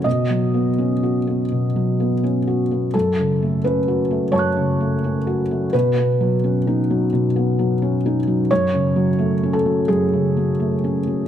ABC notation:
X:1
M:4/4
L:1/8
Q:1/4=86
K:F#dor
V:1 name="Felt piano"
d6 z2 | A2 B2 [cac'f']4 | B6- B z | c3 A G4 |]
V:2 name="Felt piano"
(3B,, F, B, (3C F B, (3B,, F, B, (3C F B, | (3F,, C, A, (3C F A, (3F,, C, A, (3C F A, | (3B,, B, F, (3C D F, (3B,, B, F, (3C D F, | (3F,, C, F, (3A, C F, (3F,, C, F, (3A, C F, |]